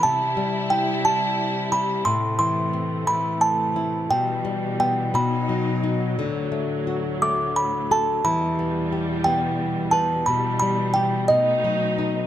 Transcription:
0.03 C3 G3 E4 A5
0.37 G3
0.70 E4 G5
1.05 G3 A5
1.72 G4 B5
2.05 A2 A3 C6
2.39 E3 C6
2.73 C4
3.07 E3 B5
3.41 A5
3.76 E4
4.11 B2 E3 G3 G5
4.45 G3
4.80 B3 G5
5.14 B2 F#3 D#4 B5
5.49 F#3
5.84 D#4
6.19 D2 A2 D3
6.52 A3
6.87 F#4
7.22 A3 D6
7.56 B5
7.91 A4 A5
8.25 E2 B2 E3 G3 B5
8.59 B3
8.92 G4
9.24 B3 G5
9.91 B4 A5
10.26 B2 E3 G3 B5
10.59 G3 B5
10.94 G4 G5
11.28 B2 A3 D#4 D#5
11.64 F#3
11.98 D#4

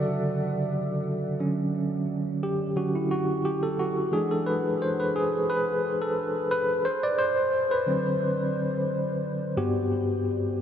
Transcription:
Already playing: C#3 D3 F#3 F#4 A4 D5 E5 F#5
1.39 D3 F#3 C#4
2.43 G4
2.76 D3 F#3 C#4 F#4
2.95 E4
3.11 F#4
3.45 G4
3.63 A4
3.79 F#4
4.12 E3 G#3 D4 G#4
4.31 A4
4.46 B4
4.82 C5
5.00 B4
5.16 G#4
5.50 B4
6.02 A4
6.51 B4
6.85 C5
7.03 D5
7.19 C5
7.71 B4
7.86 D3 F#3 C4
9.57 G2 B3 F#4 G4

